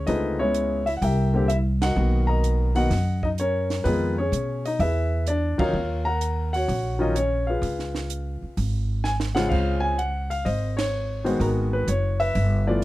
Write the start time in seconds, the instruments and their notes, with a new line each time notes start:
0.06 upright bass C#2, grand piano D3 A3 C4 D#4 F4 G#4 B4 D#5, open hi-hat
0.39 grand piano C#3 G#3 B3 C#4 E4 C#5
0.54 closed hi-hat
0.86 grand piano E4 E5, open hi-hat
0.97 grand piano F#5
1.02 upright bass C2, grand piano G4 A#4 E5 G5, open hi-hat
1.34 grand piano D3 A#3 C4 G4
1.48 grand piano E4 E5, closed hi-hat
1.82 grand piano F#4 A#4 D#5 F#5, snare, ride
1.95 upright bass B1, grand piano D#3 A#3 B3 F#4
2.27 grand piano A#4 D#5 A#5
2.44 closed hi-hat
2.75 grand piano D#3 A#3 B3 F#4 D#5 F#5, open hi-hat
2.90 upright bass F#2, snare, open hi-hat
3.23 grand piano D#4 D#5, kick
3.38 grand piano C#4 A#4 C#5, closed hi-hat
3.70 snare, open hi-hat
3.84 upright bass F2, grand piano D#3 G#3 B3 D#4 F4 G#4 B4, open hi-hat
4.18 grand piano C#4 G#4 C#5
4.32 upright bass B2, closed hi-hat
4.65 grand piano D#4 D#5, open hi-hat
4.79 upright bass E2, grand piano E4 G#4 B4 E5, open hi-hat
5.27 grand piano D4 D5, closed hi-hat
5.58 upright bass D2, grand piano D#3 F#3 C#4 D#4 F4 A#4 C#5 F5, kick, ride
5.73 upright bass D#2
6.05 grand piano A#4 F#5 A#5
6.21 closed hi-hat
6.53 grand piano F#4 C#5 F#5, open hi-hat
6.68 upright bass A#1, open hi-hat
6.99 grand piano D#3 F#3 C#4 F4 D#5
7.03 grand piano D#4
7.15 grand piano C#4 C#5, closed hi-hat
7.47 grand piano F4 G#4 B4 F5
7.62 upright bass C#2, open hi-hat
7.79 snare
7.95 snare
8.10 closed hi-hat
8.42 muted upright bass stroke
8.57 upright bass G#1, open hi-hat
9.04 grand piano G#5, snare
9.20 snare
9.35 grand piano C#3 G#3 C4 F4 F#5, snare
9.49 upright bass C#2, grand piano C5 F5, kick, crash
9.80 grand piano G#5
9.98 grand piano F#5, closed hi-hat
10.30 grand piano F5, open hi-hat
10.45 upright bass G#1, grand piano C5 D#5, open hi-hat
10.77 grand piano C#5, snare, ride
11.24 grand piano D#3 G#3 B3 F#4 C5, open hi-hat
11.40 upright bass G#1, grand piano F#4 A#4, open hi-hat
11.73 grand piano B4
11.87 upright bass F#1, grand piano C#5, closed hi-hat
12.20 grand piano B4 E5, open hi-hat
12.35 upright bass G1, open hi-hat
12.67 grand piano E3 A3 B3 F4 D5